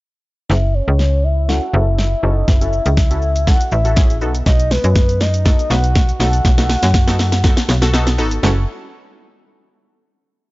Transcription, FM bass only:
0.50 F#1
0.88 C#2
1.74 F#1
2.23 F#1
2.48 F#1
2.86 C#2
3.72 A1
4.21 B1
4.46 B1
4.84 F#2
5.70 B1
6.20 B1
6.45 B1
6.83 F#2
7.69 B1
8.18 G#1
8.43 F#1

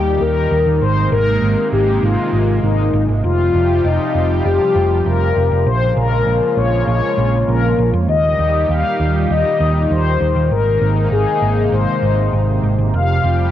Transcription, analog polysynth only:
Already playing: G4
0.21 A#4
0.81 C5
1.12 A#4
1.72 G4
2.03 F4
2.63 D#4
3.24 F4
3.84 D#4
4.45 G4
5.05 A#4
5.66 C5
5.96 A#4
6.57 C#5
6.87 C#5
7.48 A#4
8.09 D#5
8.69 F5
9.30 D#5
9.90 C5
10.51 A#4
11.12 G#4
11.72 C5
12.93 F5

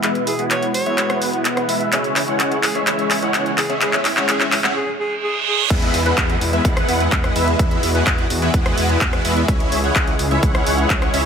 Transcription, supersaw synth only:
0.03 G#3 B3 E4 B4 E5
0.39 G#3 B3 E4 B4 F#5
0.86 G#3 B3 E4 B4 E5
0.98 G#3 B3 E4 B4 F#5
1.69 G#3 B3 E4 B4 E5
1.92 G#3 C#4 E4 C#5 E5
2.28 G#3 C#4 E4 C#5 F#5
2.75 G#3 C#4 E4 C#5 E5
2.87 G#3 C#4 E4 C#5 E5
3.22 G#3 C#4 E4 C#5 F#5
3.69 G#3 C#4 E4 C#5 E5
3.81 G#3 C#4 E4 C#5 E5
4.17 G#3 C#4 E4 C#5 F#5
4.29 G#3 C#4 E4 C#5 E5
4.64 G#3 C#4 E4 C#5 F#5
5.70 G#3 B3 E4 B4 E5
6.06 G#3 B3 E4 B4 F#5
6.53 G#3 B3 E4 B4 E5
6.65 G#3 B3 E4 B4 F#5
7.36 G#3 B3 E4 B4 E5
7.59 G#3 B3 E4 B4 E5
7.95 G#3 B3 E4 B4 F#5
8.42 G#3 B3 E4 B4 E5
8.54 G#3 B3 E4 B4 F#5
9.25 G#3 B3 E4 B4 E5
9.48 G#3 C#4 E4 C#5 E5
9.84 G#3 C#4 E4 C#5 F#5
10.31 G#3 C#4 E4 C#5 E5
10.43 G#3 C#4 E4 C#5 F#5
11.14 G#3 C#4 E4 C#5 E5

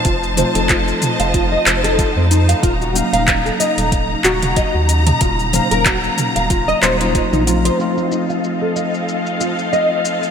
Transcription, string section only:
Already playing: D#4 C5 A5
0.05 D#5
2.63 C#3 A#5
7.79 C4 A4 D#5 F5

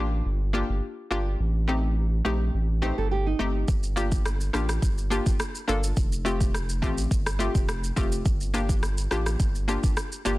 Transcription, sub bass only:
Already playing: A1
0.25 G1
0.69 G1
1.11 G1
1.39 A1
2.25 A#1
2.54 A1
2.98 G1
3.40 G1
3.68 G1
4.54 A1
4.82 G1
5.26 G1
5.68 G1
5.97 F1
6.83 A1
7.11 G1
7.55 F1
7.97 F1
8.26 G1
9.11 A1
9.40 G1
9.84 G1
10.26 G1

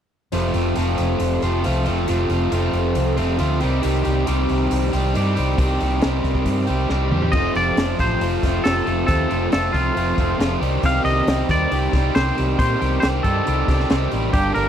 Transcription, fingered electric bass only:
0.33 F1
0.55 F1
0.77 F1
0.99 F1
1.20 F1
1.43 F1
1.66 C2
1.87 F1
2.09 F1
2.29 F1
2.52 F1
2.73 F1
2.96 C2
3.18 F1
3.41 D2
3.63 C2
3.85 C2
4.06 C2
4.28 C2
4.50 C2
4.71 C2
4.94 C2
5.16 G2
5.38 C2
5.59 C2
5.82 C2
6.04 C2
6.24 C2
6.46 G2
6.69 C2
6.90 C2
7.12 E2
7.33 F1
7.55 F1
7.77 F1
8.00 A1
8.21 F1
8.43 F1
8.65 F1
8.87 F1
9.09 D#2
9.31 F1
9.53 F1
9.74 C2
9.96 F1
10.18 F1
10.40 F1
10.61 C2
10.83 C2
11.05 C2
11.27 C2
11.49 D#2
11.71 C2
11.94 C2
12.15 C2
12.39 C2
12.60 A#2
12.82 C2
13.04 C2
13.25 G2
13.48 C2
13.69 C2
13.91 C2
14.13 A1
14.34 G1
14.56 G1

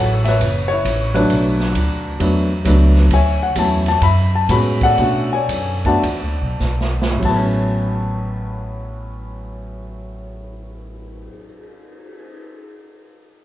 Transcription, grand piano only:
Already playing: E4 F#4 A4 C#5 F#5
0.25 B4 C#5 E5
0.68 C#5
0.73 E4
1.14 F#3 A3 D4 B4 C#5
1.18 D4 F#4
2.20 F#3 A3 B3 D4
2.65 F#3 A3 B3 D4
3.14 C#5 E5 G#5
3.43 F#5
3.56 F#3 A3 C#4 E4 A5
3.88 A5
4.03 E5 B5
4.35 A5
4.49 G#3 B3 C#4 F#4 B5
4.83 A4 D5 F#5
4.98 A3 C#4 D4 F#4
5.33 C#5 D5 G#5
5.85 A3 B3 D4 F#4 D5 F#5 A5
7.11 A2
7.19 F#3
7.25 B3 A5
7.36 C#4

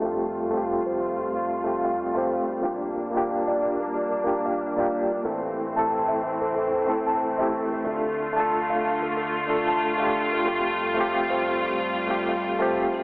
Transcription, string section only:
Already playing: A3
0.02 G3 F4
2.63 A#3 D4
5.25 E3 A3 C4
7.86 D3 F4
10.47 G3

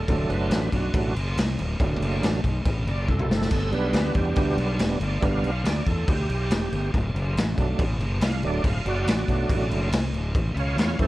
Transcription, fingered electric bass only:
0.09 D1
0.29 F#1
0.49 A1
0.73 B1
0.94 A1
1.15 F#1
1.36 C2
1.58 D1
1.80 D1
2.00 F#1
2.21 A1
2.44 B1
2.65 A1
2.85 F#1
3.08 C2
3.28 F#1
3.51 G1
3.72 B1
3.93 D2
4.15 E2
4.37 D2
4.57 B1
4.79 E1
5.00 G1
5.22 G1
5.42 B1
5.64 D2
5.86 E2
6.08 D2
6.29 B1
6.50 E1
6.72 G1
6.94 D1
7.14 F#1
7.36 A1
7.58 B1
7.79 A1
7.99 F#1
8.21 C2
8.43 D1
8.64 D1
8.85 F#1
9.06 A1
9.28 B1
9.49 A1
9.70 F#1
9.91 C2
10.13 D1
10.35 A1
10.55 C#2
10.76 E2
11.00 F#2

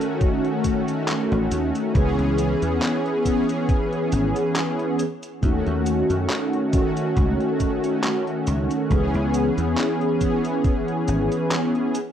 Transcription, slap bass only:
1.32 A1
1.51 D#2
1.95 C#2
2.19 C#2
2.62 E2
4.12 G#1
5.43 D#2
5.67 D#2
6.10 F#2
7.17 C#2
8.47 C#2
8.91 C#2
9.14 C#2
9.58 E2
11.08 G#1

